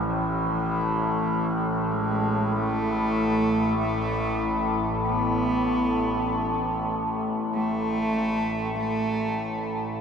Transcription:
<<
  \new Staff \with { instrumentName = "Cello" } { \time 4/4 \key e \phrygian \tempo 4 = 48 e4. gis8 a4 a8. r16 | b4. r8 a4 a8. r16 | }
  \new Staff \with { instrumentName = "Synth drone" } { \clef bass \time 4/4 \key e \phrygian <a,, a,>1~ | <a,, a,>1 | }
>>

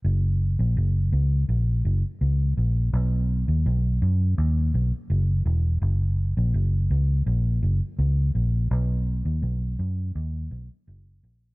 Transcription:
\new Staff \with { instrumentName = "Fingered electric bass" } { \clef bass \time 4/4 \key fis \mixolydian \tempo 4 = 83 fis,,8. ais,,16 fis,,8 cis,8 ais,,8 fis,,16 r16 cis,8 ais,,8 | b,,8. dis,16 b,,8 fis,8 dis,8 b,,16 r16 fis,,8 e,,8 | fis,,8. ais,,16 fis,,8 cis,8 ais,,8 fis,,16 r16 cis,8 ais,,8 | b,,8. dis,16 b,,8 fis,8 dis,8 b,,16 r16 fis,,8 ais,,8 | }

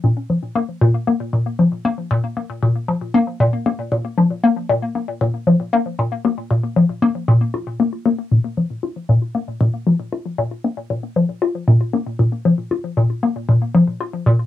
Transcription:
\new Staff \with { instrumentName = "Synth arpeggio sound" } { \clef bass \time 4/4 \key c \phrygian \tempo 4 = 116 bes,8 f8 bes8 bes,8 bes8 bes,8 f8 bes8 | bes,8 bes8 bes,8 f8 bes8 bes,8 bes8 bes,8 | f8 bes8 bes,8 bes8 bes,8 f8 bes8 bes,8 | bes8 bes,8 f8 bes8 bes,8 f'8 bes8 bes8 |
bes,8 f8 f'8 bes,8 bes8 bes,8 f8 f'8 | bes,8 bes8 bes,8 f8 f'8 bes,8 bes8 bes,8 | f8 f'8 bes,8 bes8 bes,8 f8 f'8 bes,8 | }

